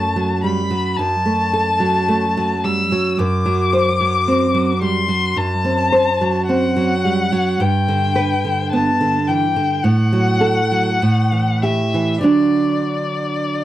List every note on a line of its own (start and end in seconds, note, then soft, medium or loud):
0.00 0.94 F#2 soft
0.00 0.32 A3 soft
0.00 0.43 A5 medium
0.16 0.60 F#3 soft
0.44 0.71 G3 soft
0.44 0.99 B5 medium
0.71 1.14 F#3 soft
0.97 3.15 F#2 soft
0.97 2.66 A5 medium
1.26 1.69 A3 soft
1.53 1.97 A4 soft
1.80 2.25 F#3 soft
2.08 2.53 A3 soft
2.37 2.81 F#3 soft
2.64 2.92 G3 soft
2.64 3.20 E6 medium
2.92 3.19 F#3 soft
3.18 5.34 F#2 medium
3.18 4.82 D6 medium
3.46 3.90 F#3 soft
3.73 4.17 C5 soft
4.01 4.44 F#3 soft
4.28 4.72 C4 soft
4.54 4.99 F#3 soft
4.81 5.10 G3 soft
4.81 5.38 C6 medium
5.08 5.53 F#3 soft
5.36 7.55 F#2 soft
5.36 6.48 A5 medium
5.65 6.09 C4 soft
5.92 6.37 C5 soft
6.21 6.65 F#3 soft
6.48 6.93 C4 soft
6.48 7.62 F#5 medium
6.76 7.21 F#3 soft
7.05 7.32 G3 soft
7.32 7.60 F#3 soft
7.60 9.80 G2 medium
7.60 8.72 G5 medium
7.88 8.33 D3 soft
8.16 8.61 B4 soft
8.45 8.89 D3 soft
8.72 9.17 B3 soft
8.72 9.29 A5 medium
9.01 9.45 D3 soft
9.27 9.56 E3 soft
9.27 9.85 G5 medium
9.56 9.84 D3 soft
9.83 10.98 A2 soft
9.83 11.64 F#5 medium
10.13 10.59 F#3 soft
10.41 10.89 A4 soft
10.72 11.02 F#3 soft
11.02 12.20 A2 soft
11.32 11.81 E3 soft
11.62 12.13 G4 soft
11.62 12.24 E5 medium
11.94 12.22 E3 soft
12.21 13.64 D3 soft
12.21 13.64 F#3 soft
12.21 13.64 D4 soft
12.21 13.64 D5 medium